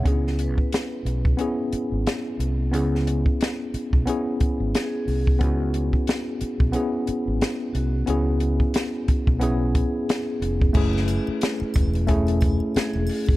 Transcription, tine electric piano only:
X:1
M:4/4
L:1/8
Q:"Swing 16ths" 1/4=90
K:C#phr
V:1 name="Tine electric piano"
[B,CDEG]4 [B,CEG]4 | [B,CEG]4 [B,CEG]4 | [B,CEF]4 [B,CEG]4 | [B,CEG]4 [B,CEG]4 |
[A,CEG]4 [A,CEG]4 |]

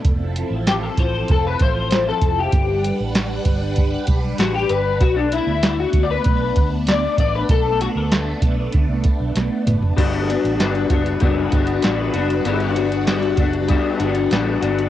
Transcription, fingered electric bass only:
X:1
M:4/4
L:1/16
Q:1/4=97
K:G
V:1 name="Fingered electric bass" clef=bass
=F,,,3 A,,,3 A,,,2 F,,,2 A,,,4 F,,,2 | G,,,3 A,,,3 G,,,4 B,,,2 A,,,2 G,,,2 | B,,,3 D,,3 D,,2 B,,,2 D,,4 A,,,2 | B,,,3 D,,3 B,,,2 D,, C,, z B,,, B,,, z F,,,2 |
G,,,3 A,,, G,,,2 F,,,2 F,,,2 G,,,2 A,,,2 F,,,2 | G,,,6 F,,,3 z G,,,2 A,,,2 G,,,2 |]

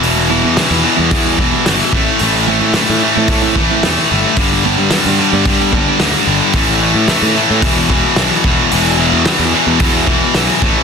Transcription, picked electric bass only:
X:1
M:4/4
L:1/16
Q:1/4=110
K:Ephr
V:1 name="Picked electric bass" clef=bass
E,,,3 E,, z E,, z E,,3 E,,, z G,,, z A,,, z | A,,,3 A,, z A,, z A,,3 A,,, z E,, z G,,, z | G,,,3 G,, z G,, z G,,3 G,,, z D,, z G,,, z | A,,,3 A,, z A,, z A,, E,,,2 E,,, z B,,, z E,,, z |
E,,,3 E,, z E,, z E,,3 E,,, z B,,, z A,,, z |]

